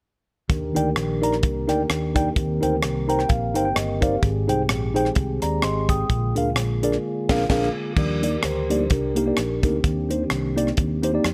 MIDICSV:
0, 0, Header, 1, 5, 480
1, 0, Start_track
1, 0, Key_signature, -3, "major"
1, 0, Tempo, 467290
1, 512, Time_signature, 4, 2, 24, 8
1, 11645, End_track
2, 0, Start_track
2, 0, Title_t, "Tine electric piano"
2, 0, Program_c, 0, 4
2, 510, Note_on_c, 0, 51, 70
2, 768, Note_on_c, 0, 63, 70
2, 775, Note_on_c, 0, 70, 66
2, 782, Note_on_c, 0, 74, 64
2, 785, Note_on_c, 0, 79, 79
2, 899, Note_off_c, 0, 63, 0
2, 903, Note_off_c, 0, 70, 0
2, 906, Note_off_c, 0, 74, 0
2, 908, Note_off_c, 0, 79, 0
2, 1218, Note_off_c, 0, 51, 0
2, 1249, Note_on_c, 0, 63, 76
2, 1252, Note_on_c, 0, 70, 70
2, 1259, Note_on_c, 0, 74, 67
2, 1269, Note_on_c, 0, 82, 78
2, 1379, Note_off_c, 0, 63, 0
2, 1381, Note_off_c, 0, 70, 0
2, 1384, Note_off_c, 0, 74, 0
2, 1389, Note_off_c, 0, 82, 0
2, 1722, Note_on_c, 0, 63, 82
2, 1729, Note_on_c, 0, 70, 72
2, 1733, Note_on_c, 0, 74, 70
2, 1739, Note_on_c, 0, 79, 84
2, 1855, Note_off_c, 0, 63, 0
2, 1859, Note_off_c, 0, 70, 0
2, 1861, Note_off_c, 0, 74, 0
2, 1863, Note_off_c, 0, 79, 0
2, 2203, Note_on_c, 0, 63, 74
2, 2212, Note_on_c, 0, 70, 69
2, 2215, Note_on_c, 0, 74, 65
2, 2220, Note_on_c, 0, 79, 83
2, 2335, Note_off_c, 0, 63, 0
2, 2339, Note_off_c, 0, 70, 0
2, 2341, Note_off_c, 0, 74, 0
2, 2343, Note_off_c, 0, 79, 0
2, 2422, Note_on_c, 0, 51, 67
2, 2681, Note_on_c, 0, 63, 76
2, 2691, Note_on_c, 0, 70, 71
2, 2697, Note_on_c, 0, 72, 65
2, 2701, Note_on_c, 0, 79, 73
2, 2813, Note_off_c, 0, 63, 0
2, 2819, Note_off_c, 0, 70, 0
2, 2821, Note_off_c, 0, 72, 0
2, 2824, Note_off_c, 0, 79, 0
2, 3132, Note_off_c, 0, 51, 0
2, 3161, Note_on_c, 0, 63, 72
2, 3171, Note_on_c, 0, 70, 71
2, 3172, Note_on_c, 0, 82, 67
2, 3178, Note_on_c, 0, 72, 68
2, 3182, Note_on_c, 0, 79, 81
2, 3262, Note_off_c, 0, 79, 0
2, 3272, Note_off_c, 0, 82, 0
2, 3275, Note_on_c, 0, 79, 65
2, 3293, Note_off_c, 0, 63, 0
2, 3298, Note_off_c, 0, 70, 0
2, 3302, Note_off_c, 0, 72, 0
2, 3375, Note_off_c, 0, 79, 0
2, 3379, Note_on_c, 0, 77, 64
2, 3642, Note_on_c, 0, 63, 81
2, 3648, Note_on_c, 0, 70, 73
2, 3656, Note_on_c, 0, 72, 73
2, 3658, Note_on_c, 0, 79, 84
2, 3730, Note_off_c, 0, 77, 0
2, 3739, Note_off_c, 0, 79, 0
2, 3751, Note_on_c, 0, 79, 66
2, 3773, Note_off_c, 0, 63, 0
2, 3776, Note_off_c, 0, 70, 0
2, 3780, Note_off_c, 0, 72, 0
2, 3853, Note_off_c, 0, 79, 0
2, 3857, Note_on_c, 0, 75, 61
2, 4111, Note_off_c, 0, 75, 0
2, 4120, Note_on_c, 0, 63, 77
2, 4125, Note_on_c, 0, 70, 72
2, 4130, Note_on_c, 0, 77, 65
2, 4134, Note_on_c, 0, 72, 69
2, 4140, Note_on_c, 0, 74, 84
2, 4252, Note_off_c, 0, 63, 0
2, 4254, Note_off_c, 0, 70, 0
2, 4259, Note_off_c, 0, 72, 0
2, 4262, Note_off_c, 0, 74, 0
2, 4327, Note_off_c, 0, 77, 0
2, 4336, Note_on_c, 0, 44, 70
2, 4599, Note_on_c, 0, 63, 76
2, 4604, Note_on_c, 0, 68, 67
2, 4609, Note_on_c, 0, 72, 66
2, 4617, Note_on_c, 0, 79, 86
2, 4731, Note_off_c, 0, 63, 0
2, 4734, Note_off_c, 0, 68, 0
2, 4736, Note_off_c, 0, 72, 0
2, 4740, Note_off_c, 0, 79, 0
2, 5048, Note_off_c, 0, 44, 0
2, 5077, Note_on_c, 0, 63, 75
2, 5085, Note_on_c, 0, 68, 75
2, 5090, Note_on_c, 0, 72, 78
2, 5098, Note_on_c, 0, 79, 92
2, 5210, Note_off_c, 0, 63, 0
2, 5214, Note_off_c, 0, 68, 0
2, 5216, Note_off_c, 0, 72, 0
2, 5221, Note_off_c, 0, 79, 0
2, 5569, Note_on_c, 0, 82, 66
2, 5573, Note_on_c, 0, 74, 56
2, 5771, Note_off_c, 0, 82, 0
2, 5773, Note_off_c, 0, 74, 0
2, 5782, Note_on_c, 0, 84, 67
2, 5787, Note_on_c, 0, 75, 51
2, 6039, Note_off_c, 0, 84, 0
2, 6041, Note_off_c, 0, 75, 0
2, 6053, Note_on_c, 0, 87, 61
2, 6057, Note_on_c, 0, 79, 52
2, 6265, Note_on_c, 0, 46, 68
2, 6509, Note_off_c, 0, 87, 0
2, 6511, Note_off_c, 0, 79, 0
2, 6527, Note_on_c, 0, 62, 70
2, 6537, Note_on_c, 0, 68, 69
2, 6542, Note_on_c, 0, 70, 67
2, 6549, Note_on_c, 0, 77, 76
2, 6655, Note_off_c, 0, 62, 0
2, 6660, Note_off_c, 0, 68, 0
2, 6662, Note_off_c, 0, 70, 0
2, 6666, Note_off_c, 0, 77, 0
2, 6973, Note_off_c, 0, 46, 0
2, 7012, Note_on_c, 0, 62, 81
2, 7016, Note_on_c, 0, 68, 69
2, 7024, Note_on_c, 0, 70, 75
2, 7028, Note_on_c, 0, 74, 84
2, 7137, Note_off_c, 0, 62, 0
2, 7140, Note_off_c, 0, 68, 0
2, 7144, Note_off_c, 0, 70, 0
2, 7146, Note_off_c, 0, 74, 0
2, 7488, Note_on_c, 0, 62, 93
2, 7493, Note_on_c, 0, 68, 93
2, 7498, Note_on_c, 0, 70, 91
2, 7507, Note_on_c, 0, 77, 100
2, 7634, Note_off_c, 0, 62, 0
2, 7636, Note_off_c, 0, 68, 0
2, 7639, Note_off_c, 0, 70, 0
2, 7644, Note_off_c, 0, 77, 0
2, 7699, Note_on_c, 0, 62, 90
2, 7707, Note_on_c, 0, 68, 86
2, 7712, Note_on_c, 0, 70, 82
2, 7717, Note_on_c, 0, 77, 81
2, 7885, Note_off_c, 0, 62, 0
2, 7889, Note_off_c, 0, 68, 0
2, 7892, Note_off_c, 0, 70, 0
2, 7895, Note_off_c, 0, 77, 0
2, 8182, Note_on_c, 0, 51, 56
2, 8447, Note_on_c, 0, 58, 64
2, 8452, Note_on_c, 0, 63, 60
2, 8456, Note_on_c, 0, 67, 59
2, 8462, Note_on_c, 0, 74, 68
2, 8576, Note_off_c, 0, 58, 0
2, 8578, Note_off_c, 0, 63, 0
2, 8580, Note_off_c, 0, 67, 0
2, 8584, Note_off_c, 0, 74, 0
2, 8893, Note_off_c, 0, 51, 0
2, 8929, Note_on_c, 0, 58, 69
2, 8935, Note_on_c, 0, 63, 58
2, 8942, Note_on_c, 0, 67, 62
2, 8947, Note_on_c, 0, 74, 72
2, 9057, Note_off_c, 0, 58, 0
2, 9060, Note_off_c, 0, 63, 0
2, 9064, Note_off_c, 0, 67, 0
2, 9066, Note_off_c, 0, 74, 0
2, 9402, Note_on_c, 0, 58, 75
2, 9412, Note_on_c, 0, 63, 69
2, 9417, Note_on_c, 0, 67, 69
2, 9425, Note_on_c, 0, 70, 73
2, 9472, Note_off_c, 0, 58, 0
2, 9476, Note_off_c, 0, 63, 0
2, 9479, Note_off_c, 0, 67, 0
2, 9483, Note_off_c, 0, 70, 0
2, 9510, Note_on_c, 0, 58, 61
2, 9514, Note_on_c, 0, 63, 55
2, 9519, Note_on_c, 0, 67, 57
2, 9527, Note_on_c, 0, 74, 67
2, 9647, Note_off_c, 0, 58, 0
2, 9649, Note_off_c, 0, 63, 0
2, 9651, Note_off_c, 0, 67, 0
2, 9655, Note_off_c, 0, 74, 0
2, 9888, Note_on_c, 0, 58, 69
2, 9894, Note_on_c, 0, 63, 61
2, 9901, Note_on_c, 0, 67, 58
2, 9909, Note_on_c, 0, 70, 67
2, 10018, Note_off_c, 0, 58, 0
2, 10021, Note_off_c, 0, 63, 0
2, 10024, Note_off_c, 0, 67, 0
2, 10028, Note_off_c, 0, 70, 0
2, 10108, Note_on_c, 0, 51, 56
2, 10365, Note_on_c, 0, 58, 67
2, 10375, Note_on_c, 0, 63, 61
2, 10379, Note_on_c, 0, 67, 58
2, 10383, Note_on_c, 0, 72, 68
2, 10497, Note_off_c, 0, 58, 0
2, 10502, Note_off_c, 0, 63, 0
2, 10504, Note_off_c, 0, 67, 0
2, 10506, Note_off_c, 0, 72, 0
2, 10818, Note_off_c, 0, 51, 0
2, 10849, Note_on_c, 0, 58, 82
2, 10852, Note_on_c, 0, 63, 71
2, 10860, Note_on_c, 0, 67, 77
2, 10863, Note_on_c, 0, 74, 93
2, 10980, Note_off_c, 0, 58, 0
2, 10981, Note_off_c, 0, 63, 0
2, 10985, Note_off_c, 0, 67, 0
2, 10987, Note_off_c, 0, 74, 0
2, 11325, Note_on_c, 0, 58, 82
2, 11330, Note_on_c, 0, 63, 76
2, 11340, Note_on_c, 0, 67, 80
2, 11343, Note_on_c, 0, 72, 93
2, 11396, Note_off_c, 0, 58, 0
2, 11398, Note_off_c, 0, 63, 0
2, 11403, Note_off_c, 0, 67, 0
2, 11405, Note_off_c, 0, 72, 0
2, 11429, Note_on_c, 0, 58, 69
2, 11440, Note_on_c, 0, 63, 69
2, 11444, Note_on_c, 0, 67, 66
2, 11452, Note_on_c, 0, 74, 82
2, 11569, Note_off_c, 0, 58, 0
2, 11574, Note_off_c, 0, 63, 0
2, 11576, Note_off_c, 0, 67, 0
2, 11580, Note_off_c, 0, 74, 0
2, 11645, End_track
3, 0, Start_track
3, 0, Title_t, "Tonewheel organ"
3, 0, Program_c, 1, 16
3, 501, Note_on_c, 1, 51, 55
3, 504, Note_on_c, 1, 67, 54
3, 506, Note_on_c, 1, 58, 53
3, 509, Note_on_c, 1, 62, 51
3, 509, Note_on_c, 1, 70, 66
3, 2404, Note_off_c, 1, 67, 0
3, 2407, Note_off_c, 1, 62, 0
3, 2422, Note_on_c, 1, 60, 55
3, 2422, Note_on_c, 1, 67, 54
3, 4303, Note_off_c, 1, 58, 0
3, 4305, Note_off_c, 1, 70, 0
3, 4323, Note_off_c, 1, 60, 0
3, 4341, Note_on_c, 1, 68, 67
3, 4342, Note_on_c, 1, 56, 56
3, 4343, Note_on_c, 1, 60, 55
3, 6217, Note_off_c, 1, 51, 0
3, 6222, Note_off_c, 1, 67, 0
3, 6243, Note_off_c, 1, 60, 0
3, 6260, Note_on_c, 1, 50, 61
3, 6262, Note_on_c, 1, 58, 56
3, 6262, Note_on_c, 1, 65, 55
3, 8144, Note_off_c, 1, 68, 0
3, 8145, Note_off_c, 1, 56, 0
3, 8164, Note_off_c, 1, 50, 0
3, 8165, Note_off_c, 1, 58, 0
3, 8165, Note_off_c, 1, 65, 0
3, 8167, Note_on_c, 1, 53, 47
3, 8176, Note_on_c, 1, 55, 44
3, 8180, Note_on_c, 1, 67, 57
3, 8182, Note_on_c, 1, 62, 51
3, 8185, Note_on_c, 1, 70, 58
3, 8198, Note_on_c, 1, 74, 79
3, 8512, Note_off_c, 1, 53, 0
3, 8517, Note_off_c, 1, 55, 0
3, 8520, Note_off_c, 1, 62, 0
3, 8648, Note_off_c, 1, 67, 0
3, 8661, Note_on_c, 1, 67, 59
3, 8676, Note_on_c, 1, 72, 79
3, 8686, Note_off_c, 1, 74, 0
3, 8926, Note_on_c, 1, 53, 47
3, 8927, Note_on_c, 1, 55, 44
3, 8928, Note_on_c, 1, 62, 48
3, 9105, Note_off_c, 1, 70, 0
3, 9120, Note_off_c, 1, 53, 0
3, 9121, Note_off_c, 1, 55, 0
3, 9121, Note_off_c, 1, 62, 0
3, 9142, Note_off_c, 1, 67, 0
3, 9152, Note_on_c, 1, 62, 59
3, 9154, Note_on_c, 1, 67, 61
3, 9161, Note_on_c, 1, 70, 87
3, 9165, Note_off_c, 1, 72, 0
3, 9863, Note_off_c, 1, 70, 0
3, 9895, Note_off_c, 1, 67, 0
3, 9901, Note_on_c, 1, 58, 56
3, 9903, Note_on_c, 1, 60, 56
3, 9907, Note_on_c, 1, 67, 77
3, 10070, Note_off_c, 1, 62, 0
3, 10102, Note_off_c, 1, 58, 0
3, 10107, Note_on_c, 1, 51, 47
3, 10115, Note_on_c, 1, 58, 49
3, 10125, Note_on_c, 1, 62, 55
3, 11327, Note_off_c, 1, 51, 0
3, 11331, Note_off_c, 1, 58, 0
3, 11337, Note_off_c, 1, 62, 0
3, 11340, Note_on_c, 1, 51, 43
3, 11343, Note_on_c, 1, 58, 43
3, 11349, Note_on_c, 1, 62, 51
3, 11530, Note_off_c, 1, 51, 0
3, 11532, Note_off_c, 1, 58, 0
3, 11535, Note_off_c, 1, 62, 0
3, 11645, Note_off_c, 1, 60, 0
3, 11645, Note_off_c, 1, 67, 0
3, 11645, End_track
4, 0, Start_track
4, 0, Title_t, "Fingered electric bass"
4, 0, Program_c, 2, 33
4, 512, Note_on_c, 2, 39, 89
4, 741, Note_off_c, 2, 39, 0
4, 778, Note_on_c, 2, 38, 80
4, 957, Note_off_c, 2, 38, 0
4, 988, Note_on_c, 2, 34, 83
4, 1475, Note_off_c, 2, 34, 0
4, 1475, Note_on_c, 2, 36, 81
4, 1701, Note_off_c, 2, 36, 0
4, 1734, Note_on_c, 2, 38, 66
4, 1914, Note_off_c, 2, 38, 0
4, 1948, Note_on_c, 2, 39, 76
4, 2356, Note_off_c, 2, 39, 0
4, 2428, Note_on_c, 2, 39, 85
4, 2657, Note_off_c, 2, 39, 0
4, 2703, Note_on_c, 2, 38, 96
4, 2879, Note_off_c, 2, 38, 0
4, 2916, Note_on_c, 2, 36, 85
4, 3319, Note_off_c, 2, 36, 0
4, 3390, Note_on_c, 2, 34, 84
4, 3650, Note_off_c, 2, 34, 0
4, 3650, Note_on_c, 2, 31, 83
4, 3831, Note_off_c, 2, 31, 0
4, 3863, Note_on_c, 2, 31, 89
4, 4271, Note_off_c, 2, 31, 0
4, 4344, Note_on_c, 2, 32, 84
4, 4573, Note_off_c, 2, 32, 0
4, 4604, Note_on_c, 2, 36, 88
4, 4787, Note_off_c, 2, 36, 0
4, 4814, Note_on_c, 2, 34, 87
4, 5226, Note_off_c, 2, 34, 0
4, 5303, Note_on_c, 2, 36, 89
4, 5533, Note_off_c, 2, 36, 0
4, 5575, Note_on_c, 2, 39, 82
4, 5753, Note_off_c, 2, 39, 0
4, 5787, Note_on_c, 2, 32, 89
4, 6193, Note_off_c, 2, 32, 0
4, 6263, Note_on_c, 2, 34, 85
4, 6493, Note_off_c, 2, 34, 0
4, 6540, Note_on_c, 2, 38, 81
4, 6747, Note_off_c, 2, 38, 0
4, 6747, Note_on_c, 2, 34, 80
4, 7154, Note_off_c, 2, 34, 0
4, 7494, Note_on_c, 2, 34, 89
4, 7637, Note_off_c, 2, 34, 0
4, 7704, Note_on_c, 2, 34, 79
4, 7888, Note_off_c, 2, 34, 0
4, 8183, Note_on_c, 2, 39, 80
4, 8592, Note_off_c, 2, 39, 0
4, 8666, Note_on_c, 2, 38, 80
4, 9150, Note_off_c, 2, 38, 0
4, 9150, Note_on_c, 2, 36, 86
4, 9557, Note_off_c, 2, 36, 0
4, 9632, Note_on_c, 2, 34, 75
4, 9860, Note_off_c, 2, 34, 0
4, 9897, Note_on_c, 2, 38, 82
4, 10076, Note_off_c, 2, 38, 0
4, 10111, Note_on_c, 2, 39, 86
4, 10518, Note_off_c, 2, 39, 0
4, 10590, Note_on_c, 2, 36, 86
4, 10999, Note_off_c, 2, 36, 0
4, 11074, Note_on_c, 2, 39, 87
4, 11482, Note_off_c, 2, 39, 0
4, 11551, Note_on_c, 2, 41, 84
4, 11645, Note_off_c, 2, 41, 0
4, 11645, End_track
5, 0, Start_track
5, 0, Title_t, "Drums"
5, 509, Note_on_c, 9, 42, 76
5, 510, Note_on_c, 9, 36, 94
5, 612, Note_off_c, 9, 42, 0
5, 613, Note_off_c, 9, 36, 0
5, 783, Note_on_c, 9, 42, 69
5, 886, Note_off_c, 9, 42, 0
5, 987, Note_on_c, 9, 37, 100
5, 994, Note_on_c, 9, 42, 80
5, 1089, Note_off_c, 9, 37, 0
5, 1097, Note_off_c, 9, 42, 0
5, 1267, Note_on_c, 9, 42, 60
5, 1361, Note_on_c, 9, 37, 35
5, 1370, Note_off_c, 9, 42, 0
5, 1464, Note_off_c, 9, 37, 0
5, 1467, Note_on_c, 9, 42, 72
5, 1472, Note_on_c, 9, 36, 101
5, 1570, Note_off_c, 9, 42, 0
5, 1575, Note_off_c, 9, 36, 0
5, 1735, Note_on_c, 9, 42, 63
5, 1737, Note_on_c, 9, 37, 31
5, 1837, Note_off_c, 9, 42, 0
5, 1839, Note_off_c, 9, 37, 0
5, 1948, Note_on_c, 9, 37, 92
5, 1956, Note_on_c, 9, 42, 77
5, 2051, Note_off_c, 9, 37, 0
5, 2059, Note_off_c, 9, 42, 0
5, 2216, Note_on_c, 9, 36, 85
5, 2221, Note_on_c, 9, 42, 65
5, 2319, Note_off_c, 9, 36, 0
5, 2324, Note_off_c, 9, 42, 0
5, 2427, Note_on_c, 9, 36, 98
5, 2427, Note_on_c, 9, 42, 80
5, 2529, Note_off_c, 9, 36, 0
5, 2530, Note_off_c, 9, 42, 0
5, 2699, Note_on_c, 9, 42, 68
5, 2802, Note_off_c, 9, 42, 0
5, 2902, Note_on_c, 9, 37, 103
5, 2909, Note_on_c, 9, 42, 78
5, 3005, Note_off_c, 9, 37, 0
5, 3012, Note_off_c, 9, 42, 0
5, 3179, Note_on_c, 9, 42, 60
5, 3275, Note_on_c, 9, 37, 35
5, 3282, Note_off_c, 9, 42, 0
5, 3378, Note_off_c, 9, 37, 0
5, 3383, Note_on_c, 9, 42, 74
5, 3388, Note_on_c, 9, 36, 100
5, 3485, Note_off_c, 9, 42, 0
5, 3491, Note_off_c, 9, 36, 0
5, 3650, Note_on_c, 9, 42, 66
5, 3753, Note_off_c, 9, 42, 0
5, 3864, Note_on_c, 9, 37, 94
5, 3871, Note_on_c, 9, 42, 81
5, 3966, Note_off_c, 9, 37, 0
5, 3974, Note_off_c, 9, 42, 0
5, 4131, Note_on_c, 9, 36, 94
5, 4133, Note_on_c, 9, 42, 69
5, 4234, Note_off_c, 9, 36, 0
5, 4236, Note_off_c, 9, 42, 0
5, 4342, Note_on_c, 9, 36, 101
5, 4343, Note_on_c, 9, 42, 70
5, 4445, Note_off_c, 9, 36, 0
5, 4446, Note_off_c, 9, 42, 0
5, 4614, Note_on_c, 9, 42, 66
5, 4717, Note_off_c, 9, 42, 0
5, 4819, Note_on_c, 9, 37, 104
5, 4826, Note_on_c, 9, 42, 78
5, 4921, Note_off_c, 9, 37, 0
5, 4929, Note_off_c, 9, 42, 0
5, 5097, Note_on_c, 9, 42, 58
5, 5190, Note_on_c, 9, 37, 34
5, 5199, Note_off_c, 9, 42, 0
5, 5293, Note_off_c, 9, 37, 0
5, 5294, Note_on_c, 9, 42, 73
5, 5304, Note_on_c, 9, 36, 103
5, 5397, Note_off_c, 9, 42, 0
5, 5407, Note_off_c, 9, 36, 0
5, 5567, Note_on_c, 9, 42, 61
5, 5569, Note_on_c, 9, 37, 33
5, 5670, Note_off_c, 9, 42, 0
5, 5672, Note_off_c, 9, 37, 0
5, 5776, Note_on_c, 9, 37, 99
5, 5784, Note_on_c, 9, 42, 74
5, 5879, Note_off_c, 9, 37, 0
5, 5887, Note_off_c, 9, 42, 0
5, 6050, Note_on_c, 9, 36, 84
5, 6053, Note_on_c, 9, 42, 67
5, 6153, Note_off_c, 9, 36, 0
5, 6156, Note_off_c, 9, 42, 0
5, 6263, Note_on_c, 9, 36, 100
5, 6266, Note_on_c, 9, 42, 76
5, 6365, Note_off_c, 9, 36, 0
5, 6369, Note_off_c, 9, 42, 0
5, 6535, Note_on_c, 9, 42, 66
5, 6637, Note_off_c, 9, 42, 0
5, 6738, Note_on_c, 9, 37, 97
5, 6745, Note_on_c, 9, 42, 78
5, 6840, Note_off_c, 9, 37, 0
5, 6848, Note_off_c, 9, 42, 0
5, 7018, Note_on_c, 9, 42, 59
5, 7112, Note_on_c, 9, 37, 34
5, 7120, Note_off_c, 9, 42, 0
5, 7215, Note_off_c, 9, 37, 0
5, 7492, Note_on_c, 9, 36, 99
5, 7492, Note_on_c, 9, 38, 100
5, 7492, Note_on_c, 9, 49, 75
5, 7594, Note_off_c, 9, 38, 0
5, 7594, Note_off_c, 9, 49, 0
5, 7595, Note_off_c, 9, 36, 0
5, 7701, Note_on_c, 9, 38, 91
5, 7701, Note_on_c, 9, 49, 68
5, 7702, Note_on_c, 9, 36, 92
5, 7804, Note_off_c, 9, 38, 0
5, 7804, Note_off_c, 9, 49, 0
5, 7805, Note_off_c, 9, 36, 0
5, 8182, Note_on_c, 9, 36, 93
5, 8182, Note_on_c, 9, 49, 79
5, 8285, Note_off_c, 9, 36, 0
5, 8285, Note_off_c, 9, 49, 0
5, 8455, Note_on_c, 9, 42, 66
5, 8558, Note_off_c, 9, 42, 0
5, 8656, Note_on_c, 9, 37, 101
5, 8663, Note_on_c, 9, 42, 78
5, 8759, Note_off_c, 9, 37, 0
5, 8766, Note_off_c, 9, 42, 0
5, 8941, Note_on_c, 9, 42, 58
5, 9044, Note_off_c, 9, 42, 0
5, 9141, Note_on_c, 9, 42, 75
5, 9149, Note_on_c, 9, 36, 101
5, 9244, Note_off_c, 9, 42, 0
5, 9251, Note_off_c, 9, 36, 0
5, 9412, Note_on_c, 9, 42, 68
5, 9515, Note_off_c, 9, 42, 0
5, 9622, Note_on_c, 9, 37, 90
5, 9630, Note_on_c, 9, 42, 80
5, 9724, Note_off_c, 9, 37, 0
5, 9732, Note_off_c, 9, 42, 0
5, 9895, Note_on_c, 9, 36, 90
5, 9896, Note_on_c, 9, 42, 68
5, 9998, Note_off_c, 9, 36, 0
5, 9999, Note_off_c, 9, 42, 0
5, 10108, Note_on_c, 9, 36, 98
5, 10109, Note_on_c, 9, 42, 77
5, 10211, Note_off_c, 9, 36, 0
5, 10211, Note_off_c, 9, 42, 0
5, 10381, Note_on_c, 9, 42, 64
5, 10484, Note_off_c, 9, 42, 0
5, 10581, Note_on_c, 9, 37, 96
5, 10588, Note_on_c, 9, 42, 76
5, 10683, Note_off_c, 9, 37, 0
5, 10691, Note_off_c, 9, 42, 0
5, 10864, Note_on_c, 9, 42, 61
5, 10962, Note_on_c, 9, 37, 33
5, 10967, Note_off_c, 9, 42, 0
5, 11064, Note_off_c, 9, 37, 0
5, 11064, Note_on_c, 9, 42, 76
5, 11072, Note_on_c, 9, 36, 93
5, 11167, Note_off_c, 9, 42, 0
5, 11175, Note_off_c, 9, 36, 0
5, 11334, Note_on_c, 9, 42, 66
5, 11437, Note_off_c, 9, 42, 0
5, 11550, Note_on_c, 9, 37, 86
5, 11558, Note_on_c, 9, 42, 74
5, 11645, Note_off_c, 9, 37, 0
5, 11645, Note_off_c, 9, 42, 0
5, 11645, End_track
0, 0, End_of_file